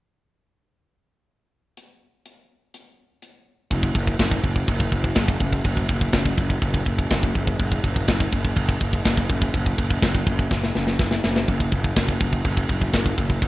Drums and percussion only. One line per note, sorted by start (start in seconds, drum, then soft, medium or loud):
1.77 closed hi-hat medium
2.26 closed hi-hat medium
2.74 closed hi-hat medium
3.22 closed hi-hat medium
3.71 kick medium
3.71 crash medium
3.83 kick medium
3.95 kick medium
3.95 crash medium
4.07 kick medium
4.19 kick medium
4.19 snare loud
4.19 crash medium
4.31 kick medium
4.43 kick medium
4.43 crash medium
4.56 kick medium
4.68 kick medium
4.68 crash medium
4.80 kick medium
4.92 kick medium
4.92 crash medium
5.04 kick medium
5.15 kick medium
5.15 snare loud
5.15 crash medium
5.28 kick medium
5.40 kick medium
5.40 crash medium
5.53 kick medium
5.64 kick medium
5.64 crash medium
5.77 kick medium
5.88 kick medium
5.88 crash medium
6.01 kick medium
6.12 kick medium
6.12 snare loud
6.12 crash medium
6.26 kick medium
6.37 kick medium
6.37 crash medium
6.50 kick medium
6.62 kick medium
6.62 crash medium
6.74 kick medium
6.85 kick medium
6.85 crash medium
6.99 kick medium
7.10 kick medium
7.10 snare loud
7.10 crash medium
7.23 kick medium
7.35 kick medium
7.35 crash medium
7.47 kick medium
7.59 kick medium
7.59 crash medium
7.72 kick medium
7.84 kick medium
7.84 crash medium
7.96 kick medium
8.08 kick medium
8.08 snare loud
8.08 crash medium
8.20 kick medium
8.32 kick medium
8.32 crash medium
8.45 kick medium
8.56 kick medium
8.56 crash medium
8.69 kick loud
8.80 kick medium
8.80 crash medium
8.93 kick medium
9.05 kick medium
9.05 snare loud
9.05 crash medium
9.17 kick medium
9.29 kick medium
9.29 crash medium
9.42 kick medium
9.54 kick medium
9.54 crash medium
9.66 kick medium
9.78 kick medium
9.78 crash medium
9.91 kick medium
10.02 kick medium
10.02 snare loud
10.02 crash medium
10.15 kick medium
10.26 kick medium
10.26 crash medium
10.39 kick medium
10.51 kick medium
10.51 snare medium
10.63 snare medium
10.75 snare medium
10.87 snare medium
10.99 kick medium
10.99 snare medium
11.11 snare medium
11.24 snare loud
11.36 snare medium
11.48 kick medium
11.48 crash medium
11.60 kick medium
11.71 kick medium
11.71 crash medium
11.84 kick medium
11.96 kick medium
11.96 snare loud
11.96 crash medium
12.09 kick medium
12.20 kick medium
12.20 crash medium
12.33 kick medium
12.45 kick medium
12.45 crash medium
12.57 kick medium
12.69 kick medium
12.69 crash medium
12.81 kick medium
12.93 kick medium
12.93 snare loud
12.93 crash medium
13.06 kick medium
13.18 kick medium
13.18 crash medium
13.30 kick medium
13.42 kick medium
13.42 crash medium